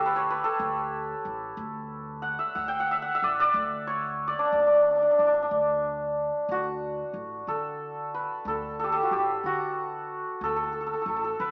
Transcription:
Already playing: upright bass D2, santur E4 G4 A4
0.06 santur B4
0.16 santur C#5
0.30 santur B4
0.44 santur A4
0.59 upright bass D2
1.25 upright bass A1
1.57 upright bass D2
2.22 santur F#5
2.39 santur E5
2.55 upright bass D2, santur F#5
2.68 santur G5
2.80 santur F#5
2.91 santur E5
3.02 santur F#5
3.15 santur E5
3.22 upright bass A1, santur D5
3.40 santur D5
3.54 upright bass D2
3.87 santur C#5
4.28 santur D5
4.39 santur D4
4.45 santur D4
4.51 upright bass D2, santur D4
4.59 santur D4
4.67 santur D4
4.74 santur D4
4.82 santur D4
4.91 santur D4
4.96 santur D4
5.02 santur D4
5.11 santur D4
5.18 upright bass A1, santur D4
5.27 santur D4
5.42 santur D4
5.51 upright bass D2
6.49 upright bass D2, santur F#4
7.14 upright bass A1
7.47 upright bass D3, santur A4
8.14 santur B4
8.45 upright bass D2, santur A4
8.79 santur A4
8.84 santur G4
8.92 santur A4
9.03 santur F#4
9.11 upright bass A1, santur G4
9.44 upright bass D3, santur F#4
10.41 upright bass D2, santur A4
10.49 santur A4
10.56 santur A4
10.63 santur A4
10.73 santur A4
10.81 santur A4
10.87 santur A4
10.94 santur A4
11.02 upright bass A1, santur A4
11.08 santur A4
11.16 santur A4
11.24 santur A4
11.39 upright bass D3, santur B4

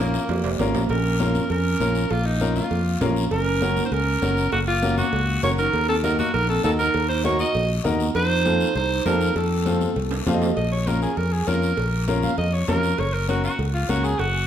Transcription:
Already playing: fingered electric bass A#1, alto saxophone A#3
0.00 upright piano C#4 F4 A#4
0.14 high timbale, short guiro
0.29 fingered electric bass F2, high conga, low timbale, long guiro
0.44 fingered electric bass F1, low timbale
0.59 fingered electric bass G#1, upright piano C#4 F4 A#4, high conga, low timbale, short guiro
0.74 fingered electric bass A#1, low timbale, short guiro
0.89 fingered electric bass A#1, clarinet C#4, alto saxophone A#4, cowbell, long guiro
1.19 upright piano C#4 F4 A#4, cowbell, high conga, short guiro
1.35 high conga, short guiro
1.50 fingered electric bass F2, clarinet C#4, alto saxophone A#4, cowbell, long guiro
1.80 fingered electric bass A#1, upright piano C#4 F4 A#4, cowbell, high conga, short guiro
1.95 short guiro
2.11 fingered electric bass A#1, clarinet A#3, alto saxophone F4, cowbell, long guiro
2.26 clarinet A#3, alto saxophone D#4
2.40 upright piano C#4 F4 A#4, cowbell, high conga, short guiro
2.56 clarinet A#3, alto saxophone F4, low conga, short guiro
2.71 fingered electric bass F2, cowbell, long guiro
3.01 fingered electric bass A#1, upright piano C#4 F4 A#4, cowbell, high conga, low conga, low timbale, short guiro
3.16 short guiro
3.31 fingered electric bass F#1, clarinet C#4, alto saxophone A#4, cowbell, long guiro
3.61 upright piano C#4 F#4 A#4, cowbell, high conga, short guiro
3.77 high conga, short guiro
3.85 clarinet D#4, alto saxophone C5
3.91 fingered electric bass C#2, clarinet C#4, alto saxophone A#4, cowbell, long guiro
4.22 fingered electric bass F#1, upright piano C#4 F#4 A#4, cowbell, high conga, short guiro
4.37 short guiro
4.52 fingered electric bass F#1, clarinet A#3, alto saxophone F#4, cowbell, long guiro
4.68 clarinet A#3, alto saxophone F4
4.82 upright piano C#4 F#4 A#4, cowbell, high conga, short guiro
4.98 clarinet A#3, alto saxophone F#4, high conga, low conga, short guiro
5.13 fingered electric bass C#2, cowbell, long guiro
5.43 fingered electric bass F#1, upright piano C#4 F#4 A#4, clarinet F#4, alto saxophone C#5, cowbell, high conga, low conga, short guiro
5.58 clarinet D#4, alto saxophone A#4, short guiro
5.73 fingered electric bass D#2, cowbell, long guiro
5.89 clarinet C4, alto saxophone A4
6.03 upright piano D#4 F#4 A#4, clarinet D#4, alto saxophone A#4, cowbell, high conga, short guiro
6.18 clarinet A#3, alto saxophone F#4, high conga, short guiro
6.34 fingered electric bass A#1, clarinet D#4, alto saxophone A#4, cowbell, long guiro
6.49 clarinet C4, alto saxophone A4
6.63 fingered electric bass D#2, upright piano D#4 F#4 A#4, clarinet D#4, alto saxophone A4, cowbell, high conga, short guiro
6.79 clarinet D#4, alto saxophone A#4, short guiro
6.94 fingered electric bass D#2, cowbell, long guiro
7.09 clarinet D#4, alto saxophone C5
7.24 upright piano D#4 F#4 A#4, clarinet F#4, alto saxophone C#5, cowbell, high conga, short guiro
7.39 clarinet F#4, alto saxophone D#5, short guiro
7.55 fingered electric bass A#1, cowbell, long guiro
7.84 fingered electric bass D#2, upright piano D#4 F#4 A#4, cowbell, high conga, low conga, short guiro
8.00 short guiro
8.15 fingered electric bass F2, clarinet D#4, alto saxophone C5, cowbell, long guiro
8.45 upright piano C4 F4 A4, cowbell, high conga, short guiro
8.60 short guiro
8.75 fingered electric bass C2, clarinet D#4, alto saxophone C5, cowbell, long guiro
9.05 fingered electric bass F2, upright piano C4 F4 A4, clarinet D#4, alto saxophone A#4, cowbell, high conga, low timbale, short guiro
9.21 short guiro
9.36 fingered electric bass F2, clarinet C4, alto saxophone A4, cowbell, long guiro
9.65 upright piano C4 F4 A4, cowbell, high conga, short guiro
9.81 high conga, short guiro
9.96 fingered electric bass C2, cowbell, long guiro
10.11 high timbale
10.26 fingered electric bass F2, upright piano C4 F4 A4 F5, cowbell, high conga, low conga, low timbale, short guiro
10.34 upright piano D#5
10.42 low timbale, short guiro
10.57 fingered electric bass A#1, alto saxophone D#5, cowbell, long guiro
10.72 alto saxophone C#5
10.87 upright piano C#4 F4 A#4, alto saxophone A#4, cowbell, high conga, short guiro
11.02 alto saxophone G#4, short guiro
11.17 fingered electric bass F2, alto saxophone A#4, cowbell, long guiro
11.32 alto saxophone G#4
11.47 fingered electric bass F2, upright piano C#4 F4 A#4, alto saxophone A#4, cowbell, high conga, short guiro
11.62 short guiro
11.77 fingered electric bass A#1, cowbell, long guiro
12.08 upright piano C#4 F4 A#4, cowbell, high conga, short guiro
12.23 alto saxophone F5, high conga, short guiro
12.38 fingered electric bass F2, alto saxophone D#5, cowbell, long guiro
12.53 alto saxophone C#5
12.68 fingered electric bass F2, upright piano C#4 F4 A#4, alto saxophone A#4, cowbell, high conga, low conga, low timbale, short guiro
12.83 short guiro
12.98 fingered electric bass F#1, alto saxophone C#5, cowbell, long guiro
13.14 alto saxophone A#4
13.28 upright piano C#4 F#4 A#4, alto saxophone F#4, cowbell, high conga, short guiro
13.44 alto saxophone F#4, short guiro
13.59 fingered electric bass C#2, cowbell, long guiro
13.74 alto saxophone F4
13.88 fingered electric bass C#2, upright piano C#4 F#4 A#4, alto saxophone F#4, cowbell, high conga, short guiro
14.04 alto saxophone G#4, short guiro
14.19 fingered electric bass F#1, alto saxophone F#4, cowbell, long guiro

